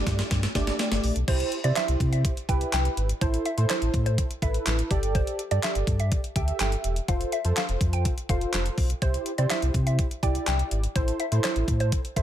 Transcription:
Already playing: A3 D4 G4 D5
0.06 G2, kick, snare, closed hi-hat
0.19 snare, closed hi-hat
0.31 G2, kick, snare, closed hi-hat
0.43 snare, closed hi-hat
0.55 G1 A3 D4 G4 D5, kick, snare, closed hi-hat
0.67 snare, closed hi-hat
0.79 snare, closed hi-hat
0.92 G1, snare, closed hi-hat
1.04 A#1, open hi-hat
1.16 B1, closed hi-hat
1.28 C2 E4 G4 C5, kick, closed hi-hat, crash
1.40 closed hi-hat
1.52 closed hi-hat
1.64 C3 E4 G4 C5 D5, closed hi-hat
1.76 E5, snare, clap, closed hi-hat
1.88 C2, closed hi-hat
2.00 C3, kick, closed hi-hat
2.13 E5, closed hi-hat
2.25 kick, closed hi-hat
2.37 closed hi-hat
2.49 C2 E4 G4 B4 G5, kick, closed hi-hat
2.61 closed hi-hat
2.73 C2 G5, snare, clap, closed hi-hat
2.85 closed hi-hat
2.97 G#1, closed hi-hat
3.09 closed hi-hat
3.21 A1 E4 A4 C5, kick, closed hi-hat
3.34 closed hi-hat
3.45 E5, closed hi-hat
3.57 A2 E4 A4 C5, closed hi-hat
3.70 C5, snare, clap, closed hi-hat
3.82 A1, closed hi-hat
3.94 A2, kick, closed hi-hat
4.06 C5, closed hi-hat
4.18 kick, closed hi-hat
4.31 closed hi-hat
4.42 A1 E4 A4 B4 E5, kick, closed hi-hat
4.54 closed hi-hat
4.66 A1, snare, clap, closed hi-hat
4.79 closed hi-hat
4.91 G1 G4 A4 D5, kick, closed hi-hat
5.03 closed hi-hat
5.15 C5, kick, closed hi-hat
5.27 closed hi-hat
5.39 closed hi-hat
5.51 G2 G4 A4 D5, closed hi-hat
5.63 E5, snare, clap, closed hi-hat
5.75 G1, closed hi-hat
5.87 G2, kick, closed hi-hat
6.00 E5, closed hi-hat
6.12 kick, closed hi-hat
6.24 closed hi-hat
6.36 D2 G4 A4 E5 G5, kick, closed hi-hat
6.48 closed hi-hat
6.60 G1 G5, snare, clap, closed hi-hat
6.72 closed hi-hat
6.84 E1, closed hi-hat
6.96 closed hi-hat
7.08 F1 F4 A4 C5 F5, kick, closed hi-hat
7.21 closed hi-hat
7.32 E5, closed hi-hat
7.45 F2 F4 A4 C5, closed hi-hat
7.57 F5, snare, clap, closed hi-hat
7.69 F1, closed hi-hat
7.81 F2, kick, closed hi-hat
7.93 G5, closed hi-hat
8.05 kick, closed hi-hat
8.18 closed hi-hat
8.29 F1 F4 A4 C5 F5, kick, closed hi-hat
8.41 closed hi-hat
8.53 F1, snare, clap, closed hi-hat
8.66 closed hi-hat
8.78 B1, kick, open hi-hat
8.90 closed hi-hat
9.02 C2 E4 G4 C5, kick, closed hi-hat
9.14 closed hi-hat
9.26 closed hi-hat
9.38 C3 E4 G4 C5 D5, closed hi-hat
9.50 E5, snare, clap, closed hi-hat
9.62 C2, closed hi-hat
9.74 C3, kick, closed hi-hat
9.87 E5, closed hi-hat
9.99 kick, closed hi-hat
10.11 closed hi-hat
10.23 C2 E4 G4 D5 G5, kick, closed hi-hat
10.35 closed hi-hat
10.47 C2 G5, snare, clap, closed hi-hat
10.59 closed hi-hat
10.71 G#1, closed hi-hat
10.84 closed hi-hat
10.95 A1 E4 A4 C5, kick, closed hi-hat
11.08 closed hi-hat
11.20 E5, closed hi-hat
11.32 A2 E4 A4 C5, closed hi-hat
11.44 C5, snare, clap, closed hi-hat
11.56 A1, closed hi-hat
11.68 A2, kick, closed hi-hat
11.80 C5, closed hi-hat
11.92 kick, closed hi-hat
12.05 closed hi-hat
12.16 A1 E4 A4 C5 E5, kick, closed hi-hat

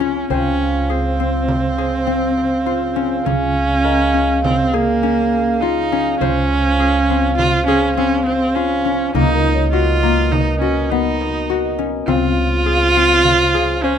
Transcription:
Already playing: C#2 C#3 F4 G#4 C5 F5
0.00 C#4, frame drum
0.30 C#2 C#3 C#4 C5 F5 G5, frame drum
0.90 C4 G#4
1.19 C4, frame drum
1.48 frame drum
1.78 G#4
2.07 C4
2.38 frame drum
2.66 F4
2.96 C#4, frame drum
3.25 C#2 C#4 G#4, frame drum
3.85 A#4 D#5
4.14 C#4
4.44 C4, frame drum
4.74 A#3 G#4
5.03 C#4
5.33 frame drum
5.61 D#4 F4
5.92 C#4, frame drum
6.20 C#2 C#4 C5, frame drum
6.80 G#4
7.10 C4
7.38 F4, frame drum
7.67 C#4 G#4
7.97 C4 C#4
8.26 C4, frame drum
8.56 C#4 F4
8.85 C#4, frame drum
9.14 C#2 B2 A#3 D#4 A#4 D#5, frame drum
9.35 A#4
9.55 C#5
9.72 F4 F#4
10.03 A#3, frame drum
10.32 D#4, frame drum
10.60 C#4 F#4, frame drum
10.90 B3 D#4
11.21 frame drum
11.50 F#4, frame drum
11.79 C#4, frame drum
12.07 C#2 C#3 C4 F4 C5 F5, frame drum
12.66 G#4
12.96 C4, frame drum
13.25 frame drum
13.55 G#4
13.83 C#4 C5

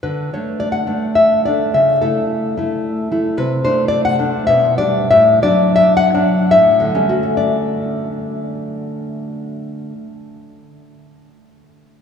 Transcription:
0.03 D3 B4
0.34 A3 D4 C#5
0.60 D5
0.72 F#5
0.87 A3 D4
1.15 E5
1.45 A3 D4 D5
1.74 C#3 E5
2.02 A3 E4 A4
2.57 A3 E4
3.12 A3 E4
3.37 C3 B4
3.64 A3 D4 C5
3.88 D5
4.05 F#5
4.19 A3 D4
4.47 B2 E5
4.78 G3 D4 D5
5.11 A2 E5
5.42 F#3 D4 D5
5.76 E5
5.97 F#5
6.14 F#3 D4
6.51 A2 E5
6.80 D3
6.95 G3 A3 C#4
7.09 F#4
7.23 A4
7.37 D5

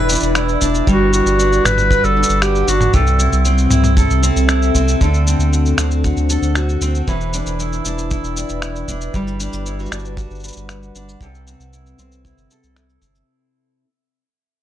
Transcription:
Already playing: E1 E3 E4 B4 D5 G5
0.09 D4, shaker
0.12 shaker
0.15 shaker
0.17 shaker
0.20 E1, shaker
0.23 shaker
0.35 E4, finger snap, shaker
0.49 shaker
0.61 E1 D4, kick, shaker
0.75 shaker
0.87 G1 G3 F#4, kick, shaker
1.13 F#4, shaker
1.26 G1, shaker
1.39 D4, shaker
1.53 shaker
1.64 G1 F#4 B4, finger snap, mid tom, shaker
1.78 F#5, mid tom, shaker
1.90 B4, kick, shaker
2.04 G1 A4, shaker
2.17 D4
2.23 shaker
2.29 G1, shaker
2.42 F#4 G4, finger snap, shaker
2.55 shaker
2.68 G1 D4 F#4, shaker
2.81 mid tom, shaker
2.94 C2 C3 C4 A4, kick, shaker
3.07 shaker
3.19 E4, shaker
3.31 C2 A4, shaker
3.45 C4, shaker
3.58 shaker
3.68 C2 E4 E5, mid tom, shaker
3.84 mid tom, shaker
3.97 A4, kick, shaker
4.10 C2, shaker
4.23 C4, shaker
4.36 C2, shaker
4.49 E4, finger snap, shaker
4.62 shaker
4.75 C2 C4, kick, shaker
4.88 shaker
5.01 D2 D3 D4 A4, kick, shaker
5.14 shaker
5.27 C4, shaker
5.39 D2, shaker
5.53 F#4, shaker
5.66 shaker
5.72 C5 F#5
5.78 D2 C4, finger snap, shaker
5.91 shaker
6.04 F#4, kick, shaker
6.17 D2, shaker
6.30 A4, shaker
6.42 D2, shaker
6.55 F#4, finger snap, shaker
6.69 shaker
6.81 D2 C4, shaker
6.95 shaker
7.08 E1 E3 E4 B4, kick, shaker
7.21 shaker
7.31 D4 D5, shaker
7.46 E1 B4, shaker
7.59 E4, shaker
7.73 shaker
7.85 E1 D4, shaker
7.98 G5, shaker
8.11 E4, kick, shaker
8.23 E1, shaker
8.37 B4, shaker
8.49 E1, shaker
8.62 E4, finger snap, shaker
8.76 shaker
8.88 E1 D4, kick, shaker
9.01 shaker
9.13 G1 G3 B4, kick, shaker
9.27 shaker
9.40 D4, shaker
9.53 G1, shaker
9.66 E4, shaker
9.79 F#4, shaker
9.86 shaker
9.92 G1 D4, finger snap, shaker
10.05 F#5, shaker
10.17 F#4, kick, shaker
10.30 G1, shaker
10.35 shaker
10.40 shaker
10.44 B4, shaker
10.48 shaker
10.53 G1, shaker
10.57 shaker
10.69 F#4, finger snap, shaker
10.83 shaker
10.95 G1 D4, shaker
11.09 shaker
11.20 C2 C3 C4 A4, kick, shaker
11.35 shaker
11.47 C4, shaker
11.56 C2 A4
11.61 shaker
11.73 E4, shaker
11.86 shaker
11.98 C2 C4, shaker
12.12 E5, shaker
12.25 E4, kick, shaker
12.38 G1, shaker
12.51 A4, shaker
12.63 C2, shaker
12.76 E4, finger snap, shaker
12.89 shaker
13.02 G1 C4, kick, shaker
13.15 shaker

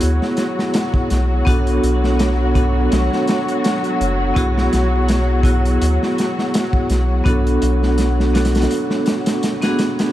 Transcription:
Already playing: F#3 B3 E4 F#4 G#4
0.01 D2, closed hi-hat
0.22 snare
0.37 snare, closed hi-hat
0.59 snare
0.74 snare, closed hi-hat
0.94 kick
1.10 B1, snare, closed hi-hat
1.45 B1 B3 D4 F#4 A4, kick, closed hi-hat
1.67 closed hi-hat
1.83 B1, closed hi-hat
2.04 snare
2.19 snare, closed hi-hat
2.54 B3 D4 F#4 A4, kick, closed hi-hat
2.92 B1, snare, closed hi-hat
3.13 snare
3.28 snare, closed hi-hat
3.48 closed hi-hat
3.64 snare, closed hi-hat
3.84 closed hi-hat
4.00 F#1, closed hi-hat
4.34 B1 B3 E4 F#4 G#4, kick, closed hi-hat
4.58 snare
4.73 B1, snare, closed hi-hat
5.08 snare, closed hi-hat
5.43 B3 E4 F#4 G#4, kick, closed hi-hat
5.65 closed hi-hat
5.82 D2, closed hi-hat
6.03 snare
6.18 snare, closed hi-hat
6.39 snare
6.54 snare, closed hi-hat
6.73 kick
6.90 B1, snare, closed hi-hat
7.24 B1 B3 D4 F#4 A4, kick, closed hi-hat
7.47 closed hi-hat
7.62 B1, closed hi-hat
7.83 snare
7.98 snare, closed hi-hat
8.20 snare
8.33 B3 D4 F#4 A4, snare, closed hi-hat
8.45 snare, closed hi-hat
8.55 snare, closed hi-hat
8.62 snare, closed hi-hat
8.71 closed hi-hat
8.90 snare
9.06 snare, closed hi-hat
9.26 snare, closed hi-hat
9.43 snare, closed hi-hat
9.62 B3 D4 F#4 G#4, snare, closed hi-hat
9.79 snare, closed hi-hat
9.99 snare, closed hi-hat

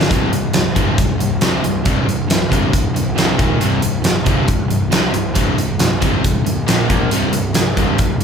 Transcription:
Already playing: G3 D4 A4
0.01 snare
0.09 C1 C2 G2 C3, kick, closed hi-hat
0.31 C1 C2 G2, closed hi-hat
0.53 C1 C2 G2, snare, closed hi-hat
0.75 G1 C2 G2 C3, kick, closed hi-hat
0.97 C1 C2 G2, kick, closed hi-hat
1.18 C1 C2 G2, closed hi-hat
1.41 C2 G2 C3, snare, closed hi-hat
1.64 C1 C2 G2, closed hi-hat
1.85 C1 C2 G2 C3, kick, closed hi-hat
2.07 C1 C2 G2, closed hi-hat
2.30 C1 C2 G2, snare, closed hi-hat
2.50 G1 C2 G2 C3, kick, closed hi-hat
2.72 C1 C2 G2, kick, closed hi-hat
2.95 C1 C2 G2, closed hi-hat
3.17 C2 G2 C3, snare, closed hi-hat
3.38 D#1 D#2 A#2 D#3, kick, closed hi-hat
3.59 C1 C2 G2 C3, closed hi-hat
3.82 C1 C2 G2, closed hi-hat
4.04 C1 C2 G2, snare, closed hi-hat
4.26 G1 C2 G2 C3, kick, closed hi-hat
4.48 C1 C2 G2, kick, closed hi-hat
4.70 C1 C2 G2, closed hi-hat
4.91 C2 G2 C3, snare, closed hi-hat
5.14 C1 C2 G2, closed hi-hat
5.34 C1 C2 G2 C3, kick, closed hi-hat
5.57 C1 C2 G2, closed hi-hat
5.79 C1 C2 G2, snare, closed hi-hat
6.00 G1 C2 G2 C3, kick, closed hi-hat
6.22 C1 C2 G2, kick, closed hi-hat
6.45 C1 C2 G2, closed hi-hat
6.66 A#1 A#2 F3 A#3, snare, closed hi-hat
6.88 A#1 A#2 F3 A#3, kick, closed hi-hat
7.11 C1 C2 G2 C3, closed hi-hat
7.33 C1 C2 G2, closed hi-hat
7.53 C1 C2 G2, snare, closed hi-hat
7.76 G1 C2 G2 C3, kick, closed hi-hat
7.98 C1 C2 G2, kick, closed hi-hat
8.20 C1 C2, closed hi-hat

